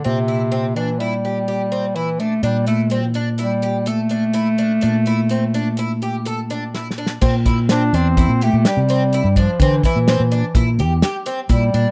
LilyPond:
<<
  \new Staff \with { instrumentName = "Twelve-string acoustic guitar" } { \time 5/4 \key c \mixolydian \tempo 4 = 126 c'8 e'8 c'8 d'8 e'8 g'8 g'8 c'8 e'8 d'8 | d'8 e'8 c'8 d'8 e'8 g'8 a'8 d'8 e'8 d'8 | d'8 e'8 c'8 d'8 e'8 g'8 a'8 d'8 e'8 d'8 | c'8 e'8 c'8 d'8 e'8 g'8 g'8 c'8 e'8 d'8 |
c'8 e'8 c'8 d'8 e'8 g'8 g'8 c'8 e'8 d'8 | }
  \new Staff \with { instrumentName = "Bass clarinet" } { \clef bass \time 5/4 \key c \mixolydian c4. e8 g2 e8 a8 | g8 a4 r8 g4 a2~ | a1 r4 | r4 d'8 c'4 a8 g4. f8 |
e8 e2 r4. g4 | }
  \new Staff \with { instrumentName = "Fretless electric bass" } { \clef bass \time 5/4 \key c \mixolydian bes,1~ bes,4 | bes,1~ bes,4 | bes,1~ bes,4 | bes,4. e,8. bes,8 bes,16 r16 c4 g,8 r16 |
d8 r16 bes,8 bes,8 r16 bes,8 e,8 r4 bes,8 bes,16 r16 | }
  \new DrumStaff \with { instrumentName = "Drums" } \drummode { \time 5/4 r4 r4 r4 r4 r4 | hh8 hh8 hh8 hh8 hh8 hh8 hh8 hh8 hh8 hh8 | hh8 hh8 hh8 hh8 hh8 hh8 hh8 hh8 \tuplet 3/2 { sn8 sn8 sn8 } | <cymc bd>8 <hh bd>8 <hh sn>8 hh8 <hh bd>8 hh8 <hh sn>8 hh8 hh8 <hh bd>8 |
<hh bd>8 <hh bd sn>8 <hh sn>8 hh8 <hh bd>8 hh8 <hh sn>8 hh8 <hh bd>8 hh8 | }
>>